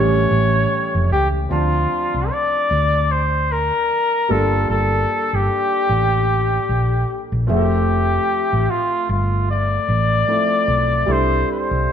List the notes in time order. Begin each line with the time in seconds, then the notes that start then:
Already playing: A1 E3 G3 A3 G4 C#5
0.00 C#4
0.31 A1
0.95 F1
1.11 C#2 G4
1.49 D2 F3 C4 D4 F4 A5
2.14 C2
2.31 D5
2.71 D2
3.12 C5
3.52 A#4
4.28 G1 G3 A#3 D4 F4 A4
4.70 G1 A4
5.33 G1 G4
5.89 A1
6.69 A#1
7.32 A#1
7.47 F1 F3 A3 C4 G#4 E5
7.52 G4
7.57 A4
8.53 A1
8.70 F4
9.09 G1 F4
9.51 D5
9.89 A1
10.27 F3 A3 C4 E4 A4
10.68 B1
11.06 C2 G3 C4 D4 E4 A4
11.12 C5
11.52 C5
11.71 C2